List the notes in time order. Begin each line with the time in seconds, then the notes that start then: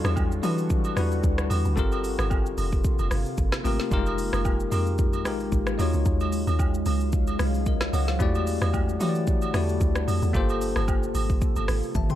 Already playing: D3 G3 D4 E4 F#4 A4
0.04 E2, cross-stick, high agogo, shaker
0.16 kick, low woodblock, shaker
0.32 shaker
0.42 E3 G3 D4 E4 F#4 B4, open hi-hat, high agogo, shaker
0.58 shaker
0.70 kick, shaker
0.84 high agogo, shaker
0.96 E2 G3 D4 E4 F#4 B4, cross-stick, open hi-hat, shaker
1.12 shaker
1.24 D2, kick, shaker
1.38 cross-stick, shaker
1.50 E2, open hi-hat, high agogo, shaker
1.65 D2, shaker
1.76 G1 C3 A#3 C4 F4 G4 A4 A#4, kick, shaker
1.92 high agogo, shaker
2.04 open hi-hat, shaker
2.19 G1, cross-stick, high agogo, shaker
2.30 kick, low woodblock, shaker
2.46 shaker
2.58 F1, open hi-hat, high agogo, shaker
2.72 kick, shaker
2.84 kick, shaker
2.99 F1, high agogo, shaker
3.11 G1, cross-stick, open hi-hat, shaker
3.26 shaker
3.38 G1, kick, shaker
3.52 cross-stick, snare, shaker
3.64 G#1 A3 C4 F4 G4 A#4, open hi-hat, high agogo, shaker
3.79 snare, shaker
3.90 F1 D#3 G3 G#3 D#4 F4 G4 A#4, kick, shaker
3.97 G#3
4.06 high agogo, shaker
4.18 open hi-hat, shaker
4.33 F1, cross-stick, high agogo, shaker
4.45 kick, low woodblock, shaker
4.60 shaker
4.71 F2 G#3 D#4 F4 G4 A#4, open hi-hat, high agogo, shaker
4.87 shaker
4.98 kick, shaker
5.13 high agogo, shaker
5.24 A#1 G#3 D#4 F4 G4 A#4, cross-stick, open hi-hat, shaker
5.40 shaker
5.52 G#1, kick, shaker
5.67 cross-stick, shaker
5.78 D#2 F#3 G#3 C#4 D#4 F4 F#4 C#5 F5, open hi-hat, high agogo, shaker
5.93 C#2, shaker
6.06 D#2, kick, shaker
6.20 high agogo, shaker
6.32 open hi-hat, shaker
6.47 D#2, high agogo, shaker
6.59 kick, low woodblock, shaker
6.74 shaker
6.86 C#2, open hi-hat, high agogo, shaker
7.01 shaker
7.12 kick, shaker
7.27 high agogo, shaker
7.39 C2, cross-stick, open hi-hat, shaker
7.54 shaker
7.66 A#4 D#5, kick, shaker
7.81 cross-stick, snare, shaker
7.93 C#2 C#5 F#5, open hi-hat, high agogo, shaker
8.08 C5 F5, snare, shaker
8.19 E2 D3 G3 A3 E4 F#4 G4 A4 D5 F#5, kick, shaker
8.35 high agogo, shaker
8.47 open hi-hat, shaker
8.62 E2, cross-stick, high agogo, shaker
8.74 kick, low woodblock, shaker
8.89 shaker
8.99 E3 A3 E4 F#4 G4 C#5, open hi-hat, high agogo, shaker
9.09 D5
9.15 shaker
9.27 kick, shaker
9.42 high agogo, shaker
9.53 E2 A3 E4 F#4 G4 D5, cross-stick, open hi-hat, shaker
9.69 shaker
9.81 D2, kick, shaker
9.96 cross-stick, shaker
10.08 F2, open hi-hat, high agogo, shaker
10.22 E2, shaker
10.33 G1 C3 A#3 F4 G4 A4 C5, kick, shaker
10.49 high agogo, shaker
10.61 open hi-hat, shaker
10.76 G1, cross-stick, high agogo, shaker
10.88 kick, low woodblock, shaker
11.03 shaker
11.15 G#1, open hi-hat, high agogo, shaker
11.29 kick, shaker
11.41 kick, shaker
11.56 G1, high agogo, shaker
11.68 G#1, cross-stick, open hi-hat, shaker
11.83 shaker
11.95 G1 E5 A5, kick, high tom, shaker
12.10 G5 C6, mid tom, shaker